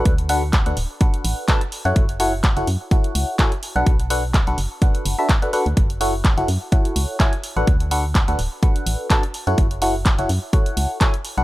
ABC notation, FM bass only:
X:1
M:4/4
L:1/16
Q:"Swing 16ths" 1/4=126
K:F#m
V:1 name="FM bass" clef=bass
D,,4- D,, D,, D,,, z3 A,,, z4 F,, | F,,,4- F,,, F,,, F,, z3 C,, z4 B,,, | B,,,4- B,,, B,,, F,,, z3 F,,, z4 D,, | F,,,4- F,,, F,,, F,, z3 C,, z4 A,,, |
D,,4- D,, D,, D,,, z3 A,,, z4 F,, | F,,,4- F,,, F,,, F,, z3 C,, z4 B,,, |]